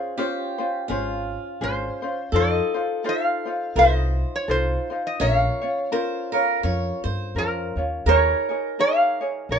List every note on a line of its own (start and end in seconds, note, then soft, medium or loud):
0.00 0.17 C#4 soft
0.00 0.17 F4 soft
0.00 0.17 G#4 medium
0.00 0.17 C5 medium
0.00 0.87 C5 medium
0.18 0.59 C#4 medium
0.18 0.58 F4 medium
0.18 0.88 G4 medium
0.18 0.57 C5 medium
0.58 0.88 C#4 soft
0.58 0.89 F4 medium
0.58 0.89 C5 medium
0.88 1.36 G#1 medium
0.88 1.60 C#4 medium
0.88 2.32 F4 medium
0.88 1.61 F4 medium
0.88 1.60 G#4 medium
0.88 1.62 C5 medium
1.61 1.88 G#1 medium
1.61 2.02 C#4 medium
1.61 2.02 F4 medium
1.61 2.02 G#4 medium
1.61 2.01 C5 medium
1.61 2.36 C5 medium
2.02 2.33 C#4 soft
2.02 2.33 F4 soft
2.02 2.33 C5 medium
2.32 2.59 F2 loud
2.32 2.75 D#4 medium
2.32 2.74 F4 medium
2.32 3.76 A4 loud
2.32 2.74 A4 medium
2.32 2.73 C5 medium
2.32 3.08 D#5 medium
2.74 3.04 D#4 soft
2.74 3.04 F4 soft
2.74 3.05 C5 medium
3.04 3.46 D#4 medium
3.04 3.46 F4 medium
3.04 3.45 A4 medium
3.04 3.44 C5 medium
3.09 3.78 F5 medium
3.46 3.76 D#4 soft
3.46 3.77 F4 soft
3.46 3.76 C5 soft
3.76 4.22 C2 medium
3.76 4.48 D#4 medium
3.76 4.49 F4 medium
3.76 4.47 A4 medium
3.76 5.19 C5 medium
3.76 4.48 C5 medium
3.76 4.36 D#5 medium
4.36 4.50 C#5 medium
4.48 4.75 C2 medium
4.48 4.90 D#4 medium
4.48 4.90 F4 medium
4.48 4.89 A4 medium
4.48 4.89 C5 medium
4.48 5.02 C5 medium
4.90 5.21 D#4 soft
4.90 5.20 F4 soft
4.90 5.20 C5 medium
5.07 5.21 D#5 medium
5.20 5.47 A#1 loud
5.20 5.61 C#4 medium
5.20 5.62 F4 medium
5.20 5.61 A#4 medium
5.20 5.92 C#5 loud
5.20 5.60 C#5 medium
5.20 6.60 F5 medium
5.61 5.91 C#4 soft
5.61 5.92 F4 soft
5.61 5.91 C#5 medium
5.92 6.33 C#4 medium
5.92 6.33 F4 medium
5.92 6.33 A#4 medium
5.92 6.30 C5 loud
6.32 6.63 C#4 soft
6.32 6.64 F4 soft
6.32 6.61 A#4 loud
6.32 6.63 C#5 medium
6.63 6.90 F2 medium
6.63 7.36 C#4 medium
6.63 7.36 F4 medium
6.63 7.36 A#4 medium
6.63 7.03 C#5 medium
7.04 7.32 G2 medium
7.04 7.72 C5 medium
7.35 7.72 F2 medium
7.35 7.77 C#4 medium
7.35 7.77 F4 medium
7.35 7.76 A#4 medium
7.35 8.10 A#4 medium
7.76 8.03 D#2 medium
7.76 8.07 C#4 soft
7.76 8.07 F4 soft
7.76 8.07 C#5 soft
8.06 8.33 D#2 medium
8.06 8.48 D#4 medium
8.06 8.48 G#4 medium
8.06 9.59 A#4 loud
8.06 8.48 A#4 medium
8.06 8.48 C#5 medium
8.06 8.81 C#5 medium
8.49 8.78 D#4 soft
8.49 8.78 G#4 soft
8.49 8.79 C#5 medium
8.79 9.20 D#4 medium
8.79 9.20 G#4 medium
8.79 9.20 A#4 medium
8.79 9.20 C#5 medium
8.79 9.53 F5 loud
9.21 9.50 D#4 soft
9.21 9.51 G#4 soft
9.21 9.51 C#5 soft
9.49 9.59 A#1 medium
9.49 9.59 D#4 medium
9.49 9.59 G#4 medium
9.49 9.59 A#4 medium
9.49 9.59 C#5 medium
9.49 9.59 D#5 medium